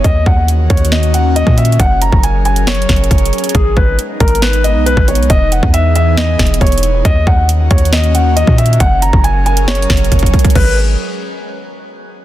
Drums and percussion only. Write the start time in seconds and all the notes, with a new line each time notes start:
0.04 kick, closed hi-hat
0.26 kick
0.48 closed hi-hat
0.70 kick, closed hi-hat, open hi-hat
0.77 closed hi-hat
0.85 closed hi-hat
0.92 snare, closed hi-hat
1.03 closed hi-hat
1.14 closed hi-hat
1.36 closed hi-hat
1.47 kick
1.58 closed hi-hat, open hi-hat
1.65 closed hi-hat
1.72 closed hi-hat
1.80 kick, closed hi-hat
2.02 closed hi-hat
2.12 kick
2.23 closed hi-hat
2.45 closed hi-hat
2.56 closed hi-hat
2.67 snare, closed hi-hat
2.74 closed hi-hat
2.82 closed hi-hat
2.89 kick, snare, closed hi-hat
2.96 closed hi-hat
3.04 closed hi-hat
3.11 kick, closed hi-hat
3.18 closed hi-hat
3.25 closed hi-hat
3.33 closed hi-hat
3.38 closed hi-hat
3.44 closed hi-hat
3.49 closed hi-hat
3.55 kick, closed hi-hat
3.77 kick
3.99 closed hi-hat
4.20 kick, closed hi-hat, open hi-hat
4.28 closed hi-hat
4.35 closed hi-hat
4.42 snare, closed hi-hat
4.53 closed hi-hat
4.64 closed hi-hat
4.86 closed hi-hat
4.97 kick
5.08 closed hi-hat, open hi-hat
5.15 closed hi-hat
5.23 closed hi-hat
5.30 kick, closed hi-hat
5.52 closed hi-hat
5.63 kick
5.74 closed hi-hat
5.95 closed hi-hat
6.17 snare, closed hi-hat
6.39 kick, snare, closed hi-hat
6.47 closed hi-hat
6.54 closed hi-hat
6.61 kick, closed hi-hat
6.67 closed hi-hat
6.72 closed hi-hat
6.78 closed hi-hat
6.83 closed hi-hat
7.05 kick, closed hi-hat
7.27 kick
7.49 closed hi-hat
7.71 kick, closed hi-hat, open hi-hat
7.78 closed hi-hat
7.85 closed hi-hat
7.93 snare, closed hi-hat
8.04 closed hi-hat
8.15 closed hi-hat
8.37 closed hi-hat
8.47 kick
8.58 closed hi-hat, open hi-hat
8.66 closed hi-hat
8.73 closed hi-hat
8.80 kick, closed hi-hat
9.02 closed hi-hat
9.13 kick
9.24 closed hi-hat
9.46 closed hi-hat
9.57 closed hi-hat
9.68 snare, closed hi-hat
9.75 closed hi-hat
9.82 closed hi-hat
9.90 kick, snare, closed hi-hat
9.97 closed hi-hat
10.04 closed hi-hat
10.12 kick, closed hi-hat
10.19 kick, closed hi-hat
10.26 closed hi-hat
10.34 kick, closed hi-hat
10.39 closed hi-hat
10.45 kick, closed hi-hat
10.50 closed hi-hat
10.55 kick, crash